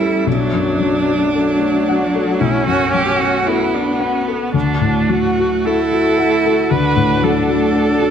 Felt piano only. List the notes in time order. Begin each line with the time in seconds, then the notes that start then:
Already playing: A1 E2 G3 C#4 G4 C#5
0.00 A4
0.27 B1
0.53 F#2
0.80 F#3
1.07 F#4
1.34 A4
1.60 F#4
1.88 F#5
2.14 A4
2.41 B1
2.67 F#2
2.94 F#3
3.19 F#4
3.47 A4
3.73 F#4
4.00 F#5
4.27 A4
4.54 D2
4.81 A2
5.09 F#3
5.38 F#4
5.65 A4
5.92 F#4
6.18 F#5
6.45 A4
6.71 D2
6.96 A2
7.23 F#3
7.48 F#4
7.74 A4
8.00 F#4